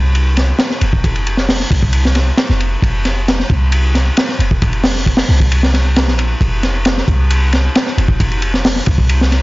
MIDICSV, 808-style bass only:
0, 0, Header, 1, 2, 480
1, 0, Start_track
1, 0, Tempo, 447761
1, 1113, Time_signature, 4, 2, 24, 8
1, 10100, End_track
2, 0, Start_track
2, 0, Title_t, "808-style bass"
2, 0, Program_c, 0, 38
2, 0, Note_on_c, 0, 36, 94
2, 568, Note_off_c, 0, 36, 0
2, 874, Note_on_c, 0, 29, 77
2, 1768, Note_off_c, 0, 29, 0
2, 1829, Note_on_c, 0, 36, 88
2, 2485, Note_off_c, 0, 36, 0
2, 2676, Note_on_c, 0, 29, 93
2, 2967, Note_off_c, 0, 29, 0
2, 3028, Note_on_c, 0, 29, 100
2, 3685, Note_off_c, 0, 29, 0
2, 3751, Note_on_c, 0, 36, 93
2, 4406, Note_off_c, 0, 36, 0
2, 4707, Note_on_c, 0, 29, 75
2, 5604, Note_off_c, 0, 29, 0
2, 5669, Note_on_c, 0, 36, 90
2, 6514, Note_on_c, 0, 34, 102
2, 6530, Note_off_c, 0, 36, 0
2, 6806, Note_off_c, 0, 34, 0
2, 6869, Note_on_c, 0, 29, 98
2, 7525, Note_off_c, 0, 29, 0
2, 7588, Note_on_c, 0, 36, 90
2, 8245, Note_off_c, 0, 36, 0
2, 8551, Note_on_c, 0, 29, 77
2, 9446, Note_off_c, 0, 29, 0
2, 9510, Note_on_c, 0, 36, 94
2, 10100, Note_off_c, 0, 36, 0
2, 10100, End_track
0, 0, End_of_file